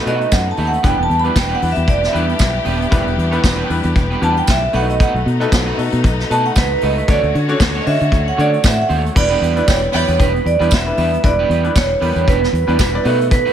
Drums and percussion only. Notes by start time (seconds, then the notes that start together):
0.07 closed hi-hat
0.21 closed hi-hat
0.32 kick, snare, tambourine
0.47 closed hi-hat
0.57 open hi-hat
0.74 closed hi-hat
0.83 kick, closed hi-hat
1.11 closed hi-hat
1.24 closed hi-hat
1.36 kick, snare, tambourine
1.49 closed hi-hat
1.62 open hi-hat
1.75 closed hi-hat
1.88 kick, closed hi-hat
2.04 snare
2.15 closed hi-hat
2.29 closed hi-hat
2.39 kick, snare, tambourine
2.65 open hi-hat
2.82 closed hi-hat
2.92 kick, closed hi-hat
3.07 closed hi-hat
3.19 closed hi-hat
3.32 closed hi-hat
3.44 kick, snare, tambourine
3.70 open hi-hat
3.83 closed hi-hat
3.96 kick, closed hi-hat
4.12 closed hi-hat
4.22 closed hi-hat
4.37 closed hi-hat
4.47 kick, snare, tambourine
4.73 open hi-hat
4.90 closed hi-hat
5.00 kick, closed hi-hat
5.16 closed hi-hat
5.28 closed hi-hat
5.41 closed hi-hat
5.52 kick, snare, tambourine
5.65 closed hi-hat
5.78 open hi-hat
5.92 closed hi-hat
6.04 kick, closed hi-hat
6.20 snare
6.32 closed hi-hat
6.45 closed hi-hat
6.56 kick, snare, tambourine
6.71 closed hi-hat
6.81 open hi-hat
6.98 closed hi-hat
7.08 kick, closed hi-hat
7.23 closed hi-hat
7.35 closed hi-hat
7.48 closed hi-hat
7.60 kick, snare, tambourine
7.73 closed hi-hat
7.86 open hi-hat
8.00 closed hi-hat
8.12 kick, closed hi-hat
8.28 closed hi-hat
8.39 closed hi-hat
8.53 closed hi-hat
8.64 kick, snare, tambourine
8.79 closed hi-hat
8.89 open hi-hat
9.06 closed hi-hat
9.16 kick, crash
9.43 closed hi-hat
9.56 closed hi-hat
9.68 kick, snare, tambourine
9.82 closed hi-hat
9.94 open hi-hat
10.08 closed hi-hat
10.20 kick, closed hi-hat
10.36 closed hi-hat
10.47 closed hi-hat
10.61 closed hi-hat
10.71 kick, snare, tambourine
10.88 closed hi-hat
10.97 open hi-hat
11.14 closed hi-hat
11.24 kick, closed hi-hat
11.50 closed hi-hat
11.64 closed hi-hat
11.76 kick, snare, tambourine
11.89 closed hi-hat
12.02 open hi-hat
12.16 closed hi-hat
12.28 kick, closed hi-hat
12.44 snare
12.55 closed hi-hat
12.69 closed hi-hat
12.79 kick, snare, tambourine
12.95 closed hi-hat
13.05 open hi-hat
13.21 closed hi-hat
13.31 kick, closed hi-hat
13.47 closed hi-hat